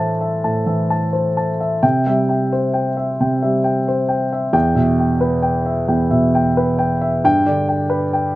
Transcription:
Already playing: A2 E3 C5 E5 A5
0.21 E5
0.44 A2 A5
0.66 E3 E5
0.90 A5
1.13 C5
1.37 A5
1.60 E5
1.83 C3 G5
2.06 G3 E5
2.29 G5
2.53 C5
2.74 G5
2.97 E5
3.20 C3 G5
3.43 G3 E5
3.64 G5
3.88 C5
4.09 G5
4.33 E5
4.53 E2 G5
4.75 B2 E5
4.99 G5
5.21 B4
5.42 G5
5.66 E5
5.88 E2 G5
6.10 B2 E5
6.35 G5
6.57 B4
6.79 G5
7.01 E5
7.24 G2 G5
7.46 D3 D5
7.69 G5
7.90 B4
8.13 G5

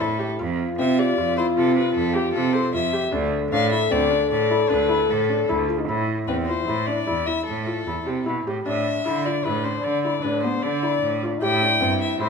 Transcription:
Already playing: E4
0.00 A2 E4 A4
0.19 G4
0.39 F2 F4
0.79 C3 C4 E5
0.99 G4 D5
1.17 F2 F4
1.37 E4 C5
1.57 C3 F4 A4
1.76 F4 B4
1.94 F2 A4
2.14 G4
2.33 C3 F4 A4
2.53 A4 C5
2.73 F2 F4 E5
2.93 G4
3.11 D2 D4 A4
3.51 A2 D4 F5
3.71 E4 E5
3.91 D2 C4 D5
4.10 D4
4.30 A2 D5
4.50 E4
4.69 D2 D4 B4
4.89 E4
5.09 A2 A4
5.29 D4
5.48 D2 E4
5.68 F4
5.80 D#4
5.88 A2 E4
6.27 E2 C4 B4
6.46 F4 C5
6.67 A2 E4
6.86 D4 D5
7.07 E2 E4
7.26 E4 E5
7.47 A2 A4
7.66 F4
7.86 E2 E4
8.06 C3 G4
8.26 B2 E4
8.45 A2 G4
8.65 A2 D4 E5
9.05 D3 E4
9.26 F4 D5
9.45 A2 E4 B4
9.64 D4 C5
9.83 D3 D5
10.04 E4 D5
10.22 A2 D4 B4
10.43 B3 C5
10.62 D3 D4 D5
10.83 E4
11.02 A2
11.23 F4
11.39 A2 E4 G4 G5
11.62 D4
11.80 G2 C4
12.01 E5
12.19 A2 E4 C5

